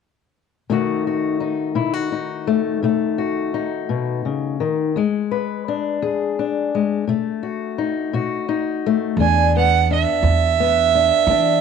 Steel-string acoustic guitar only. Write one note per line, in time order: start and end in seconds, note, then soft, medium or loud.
0.70 1.34 B2 medium
0.70 4.59 D#3 soft
0.70 2.46 A3 soft
0.70 1.39 D#4 soft
0.70 1.06 F#4 medium
1.07 1.75 F#4 soft
1.40 2.11 D#4 soft
1.75 2.40 B2 medium
1.75 1.94 E4 soft
1.94 3.17 F#4 soft
2.12 3.53 D#4 soft
2.47 2.83 A3 soft
2.83 3.46 B2 medium
2.83 4.91 A3 medium
3.18 4.91 F#4 soft
3.54 4.91 D#4 medium
3.89 4.24 B2 medium
4.25 4.60 C#3 medium
4.60 4.95 D#3 medium
4.96 5.59 E2 medium
4.96 6.72 G#3 soft
5.31 6.01 B4 soft
5.68 6.37 D4 medium
6.02 6.65 E2 medium
6.02 7.03 G#4 soft
6.39 7.04 D4 soft
6.75 7.04 G#3 soft
7.07 7.70 B2 medium
7.07 8.84 A3 medium
7.43 8.13 F#4 soft
7.78 8.47 D#4 soft
8.13 8.76 B2 medium
8.13 9.15 F#4 medium
8.49 9.14 D#4 medium
8.86 9.16 A3 soft
9.19 9.82 E2 medium
9.19 9.89 D4 medium
9.56 10.59 B3 soft
9.91 10.94 D4 medium
10.24 10.87 E2 medium
10.60 11.61 B3 medium
10.95 11.29 D4 soft
11.30 11.61 E2 medium
11.30 11.61 D4 medium